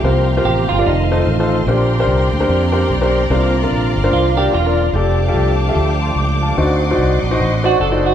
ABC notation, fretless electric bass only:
X:1
M:4/4
L:1/8
Q:"Swing" 1/4=147
K:F
V:1 name="Fretless electric bass" clef=bass
C,,2 A,,, G,,, F,,,2 A,,,2 | B,,,2 C,, D,, F,,2 =B,,,2 | C,,2 B,,, G,,, C,,2 E,,,2 | F,,,2 C,,2 D,,2 _D,,2 |
D,,2 C,, B,,, A,,,2 ^F,,,2 |]